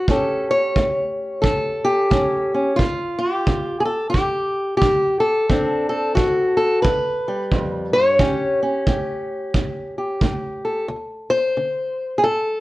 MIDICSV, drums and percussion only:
0, 0, Header, 1, 2, 480
1, 0, Start_track
1, 0, Tempo, 674916
1, 62, Time_signature, 4, 2, 24, 8
1, 8963, End_track
2, 0, Start_track
2, 0, Title_t, "Drums"
2, 57, Note_on_c, 9, 36, 66
2, 128, Note_off_c, 9, 36, 0
2, 539, Note_on_c, 9, 36, 66
2, 610, Note_off_c, 9, 36, 0
2, 1021, Note_on_c, 9, 36, 59
2, 1092, Note_off_c, 9, 36, 0
2, 1503, Note_on_c, 9, 36, 61
2, 1574, Note_off_c, 9, 36, 0
2, 1985, Note_on_c, 9, 36, 65
2, 2056, Note_off_c, 9, 36, 0
2, 2466, Note_on_c, 9, 36, 63
2, 2537, Note_off_c, 9, 36, 0
2, 2946, Note_on_c, 9, 36, 58
2, 3017, Note_off_c, 9, 36, 0
2, 3426, Note_on_c, 9, 36, 69
2, 3497, Note_off_c, 9, 36, 0
2, 3908, Note_on_c, 9, 36, 63
2, 3979, Note_off_c, 9, 36, 0
2, 4387, Note_on_c, 9, 36, 67
2, 4458, Note_off_c, 9, 36, 0
2, 4868, Note_on_c, 9, 36, 71
2, 4939, Note_off_c, 9, 36, 0
2, 5347, Note_on_c, 9, 36, 68
2, 5419, Note_off_c, 9, 36, 0
2, 5827, Note_on_c, 9, 36, 69
2, 5898, Note_off_c, 9, 36, 0
2, 6306, Note_on_c, 9, 36, 65
2, 6378, Note_off_c, 9, 36, 0
2, 6786, Note_on_c, 9, 36, 61
2, 6857, Note_off_c, 9, 36, 0
2, 7264, Note_on_c, 9, 36, 70
2, 7335, Note_off_c, 9, 36, 0
2, 8963, End_track
0, 0, End_of_file